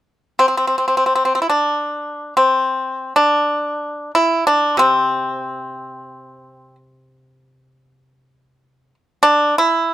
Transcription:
0, 0, Header, 1, 2, 480
1, 0, Start_track
1, 0, Tempo, 500000
1, 9540, End_track
2, 0, Start_track
2, 0, Title_t, "Pipa"
2, 0, Program_c, 0, 105
2, 376, Note_on_c, 0, 60, 48
2, 449, Note_off_c, 0, 60, 0
2, 461, Note_on_c, 0, 60, 32
2, 540, Note_off_c, 0, 60, 0
2, 551, Note_on_c, 0, 60, 37
2, 636, Note_off_c, 0, 60, 0
2, 647, Note_on_c, 0, 60, 28
2, 732, Note_off_c, 0, 60, 0
2, 748, Note_on_c, 0, 60, 32
2, 828, Note_off_c, 0, 60, 0
2, 842, Note_on_c, 0, 60, 25
2, 921, Note_off_c, 0, 60, 0
2, 932, Note_on_c, 0, 60, 33
2, 1007, Note_off_c, 0, 60, 0
2, 1019, Note_on_c, 0, 60, 26
2, 1097, Note_off_c, 0, 60, 0
2, 1109, Note_on_c, 0, 60, 32
2, 1191, Note_off_c, 0, 60, 0
2, 1201, Note_on_c, 0, 60, 27
2, 1283, Note_off_c, 0, 60, 0
2, 1296, Note_on_c, 0, 60, 34
2, 1357, Note_off_c, 0, 60, 0
2, 1361, Note_on_c, 0, 64, 34
2, 1432, Note_off_c, 0, 64, 0
2, 1436, Note_on_c, 0, 62, 47
2, 2239, Note_off_c, 0, 62, 0
2, 2274, Note_on_c, 0, 60, 44
2, 3012, Note_off_c, 0, 60, 0
2, 3033, Note_on_c, 0, 62, 51
2, 3942, Note_off_c, 0, 62, 0
2, 3984, Note_on_c, 0, 64, 61
2, 4267, Note_off_c, 0, 64, 0
2, 4290, Note_on_c, 0, 62, 55
2, 4570, Note_off_c, 0, 62, 0
2, 4581, Note_on_c, 0, 48, 40
2, 4600, Note_on_c, 0, 60, 51
2, 6481, Note_off_c, 0, 60, 0
2, 8585, Note_off_c, 0, 48, 0
2, 8858, Note_on_c, 0, 62, 68
2, 9164, Note_off_c, 0, 62, 0
2, 9199, Note_on_c, 0, 64, 69
2, 9540, Note_off_c, 0, 64, 0
2, 9540, End_track
0, 0, End_of_file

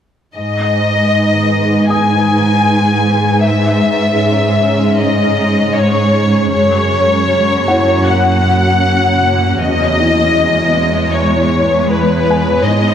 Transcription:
0, 0, Header, 1, 5, 480
1, 0, Start_track
1, 0, Key_signature, 5, "minor"
1, 0, Tempo, 769231
1, 227, Time_signature, 4, 2, 24, 8
1, 8076, End_track
2, 0, Start_track
2, 0, Title_t, "Felt piano"
2, 0, Program_c, 0, 0
2, 343, Control_c, 0, 64, 127
2, 1186, Note_on_c, 0, 87, 28
2, 2158, Control_c, 0, 64, 0
2, 2264, Control_c, 0, 64, 127
2, 2601, Note_off_c, 0, 87, 0
2, 4077, Control_c, 0, 64, 0
2, 4166, Control_c, 0, 64, 127
2, 4792, Note_on_c, 0, 78, 41
2, 4798, Note_on_c, 0, 64, 28
2, 5998, Control_c, 0, 64, 0
2, 6118, Control_c, 0, 64, 127
2, 6204, Note_off_c, 0, 78, 0
2, 6207, Note_off_c, 0, 64, 0
2, 6239, Note_on_c, 0, 64, 42
2, 7648, Note_off_c, 0, 64, 0
2, 7678, Note_on_c, 0, 80, 30
2, 7919, Control_c, 0, 64, 0
2, 8019, Control_c, 0, 64, 127
2, 8076, Note_off_c, 0, 80, 0
2, 8076, End_track
3, 0, Start_track
3, 0, Title_t, "Violin section"
3, 0, Program_c, 1, 48
3, 223, Note_on_c, 1, 75, 60
3, 1160, Note_off_c, 1, 75, 0
3, 1186, Note_on_c, 1, 80, 59
3, 2144, Note_on_c, 1, 76, 58
3, 2146, Note_off_c, 1, 80, 0
3, 3086, Note_off_c, 1, 76, 0
3, 3111, Note_on_c, 1, 75, 52
3, 3589, Note_off_c, 1, 75, 0
3, 3589, Note_on_c, 1, 73, 57
3, 4061, Note_off_c, 1, 73, 0
3, 4069, Note_on_c, 1, 73, 64
3, 5009, Note_off_c, 1, 73, 0
3, 5027, Note_on_c, 1, 78, 63
3, 5986, Note_on_c, 1, 75, 72
3, 5987, Note_off_c, 1, 78, 0
3, 6941, Note_on_c, 1, 73, 51
3, 6946, Note_off_c, 1, 75, 0
3, 7421, Note_on_c, 1, 71, 60
3, 7424, Note_off_c, 1, 73, 0
3, 7894, Note_off_c, 1, 71, 0
3, 7899, Note_on_c, 1, 75, 66
3, 8076, Note_off_c, 1, 75, 0
3, 8076, End_track
4, 0, Start_track
4, 0, Title_t, "Ambient pad"
4, 0, Program_c, 2, 92
4, 216, Note_on_c, 2, 63, 57
4, 217, Note_on_c, 2, 56, 57
4, 219, Note_on_c, 2, 68, 51
4, 221, Note_on_c, 2, 71, 54
4, 2116, Note_off_c, 2, 63, 0
4, 2119, Note_off_c, 2, 71, 0
4, 2141, Note_on_c, 2, 61, 53
4, 2142, Note_on_c, 2, 73, 58
4, 4037, Note_off_c, 2, 56, 0
4, 4038, Note_off_c, 2, 68, 0
4, 4068, Note_on_c, 2, 66, 57
4, 4069, Note_on_c, 2, 58, 56
4, 5978, Note_off_c, 2, 73, 0
4, 5984, Note_off_c, 2, 61, 0
4, 5986, Note_on_c, 2, 73, 52
4, 5987, Note_off_c, 2, 66, 0
4, 5987, Note_on_c, 2, 59, 63
4, 5988, Note_off_c, 2, 58, 0
4, 5989, Note_on_c, 2, 56, 58
4, 5989, Note_on_c, 2, 64, 58
4, 7881, Note_off_c, 2, 73, 0
4, 7908, Note_off_c, 2, 64, 0
4, 7911, Note_on_c, 2, 63, 62
4, 7911, Note_on_c, 2, 75, 59
4, 8076, Note_off_c, 2, 56, 0
4, 8076, Note_off_c, 2, 59, 0
4, 8076, Note_off_c, 2, 63, 0
4, 8076, Note_off_c, 2, 75, 0
4, 8076, End_track
5, 0, Start_track
5, 0, Title_t, "Cello section"
5, 0, Program_c, 3, 48
5, 223, Note_on_c, 3, 44, 45
5, 4040, Note_off_c, 3, 44, 0
5, 4067, Note_on_c, 3, 42, 53
5, 5985, Note_on_c, 3, 40, 49
5, 5987, Note_off_c, 3, 42, 0
5, 7881, Note_off_c, 3, 40, 0
5, 7904, Note_on_c, 3, 44, 61
5, 8076, Note_off_c, 3, 44, 0
5, 8076, End_track
0, 0, End_of_file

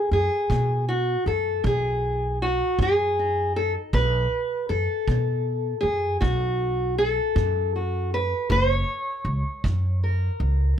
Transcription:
0, 0, Header, 1, 4, 480
1, 0, Start_track
1, 0, Tempo, 762389
1, 2477, Time_signature, 12, 3, 24, 8
1, 6793, End_track
2, 0, Start_track
2, 0, Title_t, "Steel-string acoustic guitar"
2, 0, Program_c, 0, 25
2, 0, Note_on_c, 0, 68, 83
2, 79, Note_off_c, 0, 68, 0
2, 82, Note_on_c, 0, 68, 78
2, 324, Note_on_c, 0, 47, 62
2, 555, Note_off_c, 0, 68, 0
2, 558, Note_on_c, 0, 66, 76
2, 752, Note_off_c, 0, 47, 0
2, 797, Note_off_c, 0, 66, 0
2, 802, Note_on_c, 0, 69, 80
2, 1030, Note_on_c, 0, 47, 68
2, 1039, Note_off_c, 0, 69, 0
2, 1049, Note_on_c, 0, 68, 80
2, 1466, Note_off_c, 0, 47, 0
2, 1522, Note_off_c, 0, 68, 0
2, 1524, Note_on_c, 0, 66, 82
2, 1757, Note_on_c, 0, 47, 69
2, 1761, Note_off_c, 0, 66, 0
2, 1777, Note_on_c, 0, 68, 99
2, 2010, Note_on_c, 0, 63, 51
2, 2189, Note_off_c, 0, 47, 0
2, 2241, Note_off_c, 0, 68, 0
2, 2243, Note_on_c, 0, 69, 92
2, 2344, Note_off_c, 0, 69, 0
2, 2455, Note_off_c, 0, 63, 0
2, 2479, Note_on_c, 0, 47, 72
2, 2482, Note_on_c, 0, 71, 101
2, 2911, Note_off_c, 0, 47, 0
2, 2951, Note_off_c, 0, 71, 0
2, 2954, Note_on_c, 0, 69, 80
2, 3220, Note_on_c, 0, 47, 64
2, 3641, Note_off_c, 0, 47, 0
2, 3653, Note_off_c, 0, 69, 0
2, 3655, Note_on_c, 0, 68, 84
2, 3905, Note_off_c, 0, 68, 0
2, 3907, Note_on_c, 0, 66, 79
2, 3915, Note_on_c, 0, 47, 77
2, 4348, Note_off_c, 0, 47, 0
2, 4392, Note_off_c, 0, 66, 0
2, 4397, Note_on_c, 0, 69, 94
2, 4640, Note_on_c, 0, 47, 69
2, 4876, Note_off_c, 0, 69, 0
2, 4884, Note_on_c, 0, 66, 44
2, 5070, Note_off_c, 0, 47, 0
2, 5122, Note_off_c, 0, 66, 0
2, 5125, Note_on_c, 0, 71, 96
2, 5349, Note_on_c, 0, 42, 81
2, 5360, Note_off_c, 0, 71, 0
2, 5362, Note_on_c, 0, 72, 105
2, 5476, Note_off_c, 0, 72, 0
2, 5476, Note_on_c, 0, 73, 105
2, 5783, Note_off_c, 0, 42, 0
2, 6078, Note_on_c, 0, 42, 68
2, 6315, Note_off_c, 0, 73, 0
2, 6318, Note_on_c, 0, 70, 50
2, 6507, Note_off_c, 0, 42, 0
2, 6793, Note_off_c, 0, 70, 0
2, 6793, End_track
3, 0, Start_track
3, 0, Title_t, "Upright bass"
3, 0, Program_c, 1, 32
3, 72, Note_on_c, 1, 42, 84
3, 175, Note_off_c, 1, 42, 0
3, 317, Note_on_c, 1, 47, 98
3, 721, Note_off_c, 1, 47, 0
3, 794, Note_on_c, 1, 42, 80
3, 997, Note_off_c, 1, 42, 0
3, 1032, Note_on_c, 1, 35, 93
3, 1641, Note_off_c, 1, 35, 0
3, 1754, Note_on_c, 1, 42, 90
3, 2362, Note_off_c, 1, 42, 0
3, 2476, Note_on_c, 1, 35, 108
3, 2679, Note_off_c, 1, 35, 0
3, 2959, Note_on_c, 1, 42, 83
3, 3059, Note_off_c, 1, 42, 0
3, 3197, Note_on_c, 1, 47, 94
3, 3602, Note_off_c, 1, 47, 0
3, 3670, Note_on_c, 1, 42, 78
3, 3876, Note_off_c, 1, 42, 0
3, 3914, Note_on_c, 1, 35, 94
3, 4522, Note_off_c, 1, 35, 0
3, 4632, Note_on_c, 1, 42, 98
3, 5240, Note_off_c, 1, 42, 0
3, 5350, Note_on_c, 1, 30, 102
3, 5554, Note_off_c, 1, 30, 0
3, 5821, Note_on_c, 1, 37, 86
3, 5928, Note_off_c, 1, 37, 0
3, 6069, Note_on_c, 1, 42, 92
3, 6475, Note_off_c, 1, 42, 0
3, 6547, Note_on_c, 1, 37, 86
3, 6751, Note_off_c, 1, 37, 0
3, 6793, End_track
4, 0, Start_track
4, 0, Title_t, "Drums"
4, 314, Note_on_c, 9, 36, 67
4, 377, Note_off_c, 9, 36, 0
4, 1035, Note_on_c, 9, 36, 64
4, 1098, Note_off_c, 9, 36, 0
4, 1755, Note_on_c, 9, 36, 55
4, 1818, Note_off_c, 9, 36, 0
4, 2475, Note_on_c, 9, 36, 60
4, 2538, Note_off_c, 9, 36, 0
4, 3196, Note_on_c, 9, 36, 60
4, 3259, Note_off_c, 9, 36, 0
4, 3915, Note_on_c, 9, 36, 65
4, 3978, Note_off_c, 9, 36, 0
4, 4634, Note_on_c, 9, 36, 60
4, 4697, Note_off_c, 9, 36, 0
4, 5351, Note_on_c, 9, 36, 62
4, 5414, Note_off_c, 9, 36, 0
4, 6069, Note_on_c, 9, 36, 63
4, 6132, Note_off_c, 9, 36, 0
4, 6793, End_track
0, 0, End_of_file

